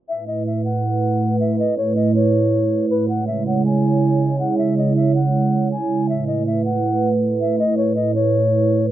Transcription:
0.09 3.06 A2 medium
0.09 3.06 A3 medium
0.09 8.91 E4 medium
0.09 3.06 B4 medium
0.09 0.25 E5 loud
0.28 0.43 D#5 medium
0.47 0.62 E5 medium
0.65 1.36 F#5 medium
1.41 1.56 E5 medium
1.59 1.75 D#5 loud
1.77 1.93 C#5 medium
1.96 2.11 D#5 medium
2.15 2.86 C#5 medium
2.90 3.06 B4 medium
3.08 6.06 C#3 medium
3.08 6.06 G#3 medium
3.08 6.06 C#5 medium
3.08 3.24 F#5 medium
3.27 3.43 E5 medium
3.47 3.62 F#5 medium
3.65 4.36 G#5 medium
4.40 4.55 F#5 medium
4.58 4.74 E5 loud
4.78 4.93 D#5 medium
4.96 5.12 E5 medium
5.15 5.68 F#5 medium
5.72 6.07 G#5 medium
6.09 8.91 A2 medium
6.09 8.91 A3 medium
6.09 8.91 B4 medium
6.09 6.25 E5 loud
6.27 6.43 D#5 medium
6.47 6.62 E5 medium
6.65 7.09 F#5 medium
7.41 7.56 E5 medium
7.59 7.75 D#5 loud
7.77 7.93 C#5 medium
7.96 8.12 D#5 medium
8.15 8.86 C#5 medium

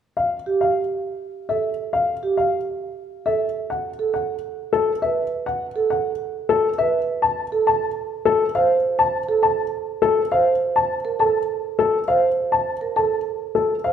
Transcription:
0.17 0.36 F5 soft
0.46 0.65 G4 soft
0.61 0.80 F5 soft
1.49 1.68 A4 soft
1.49 1.68 E5 soft
1.93 2.12 F5 soft
2.23 2.42 G4 soft
2.37 2.57 F5 soft
3.26 3.45 A4 soft
3.26 3.45 E5 soft
3.70 3.89 F#5 soft
3.99 4.18 A4 soft
4.14 4.33 F#5 soft
4.73 4.92 A4 medium
5.02 5.21 B4 soft
5.02 5.21 E5 soft
5.46 5.65 F#5 medium
5.76 5.95 A4 medium
5.90 6.09 F#5 soft
6.49 6.68 A4 medium
6.78 6.98 B4 medium
6.78 6.98 E5 medium
7.22 7.42 A5 medium
7.52 7.71 A4 medium
7.67 7.86 A5 medium
8.25 8.45 A4 medium
8.55 8.74 C5 medium
8.55 8.74 F5 medium
8.99 9.18 A5 medium
9.29 9.48 A4 medium
9.43 9.62 A5 medium
10.02 10.21 A4 medium
10.31 10.51 C5 medium
10.31 10.51 F5 medium
10.76 10.95 A5 medium
11.05 11.24 A#4 medium
11.19 11.39 A4 medium
11.19 11.39 A5 soft
11.79 11.98 A4 medium
12.08 12.27 C5 medium
12.08 12.27 F5 medium
12.52 12.71 A5 medium
12.81 13.01 A#4 medium
12.96 13.15 A4 soft
12.96 13.15 A5 soft
13.55 13.74 A4 medium
13.84 13.93 C5 soft
13.84 13.93 F5 soft

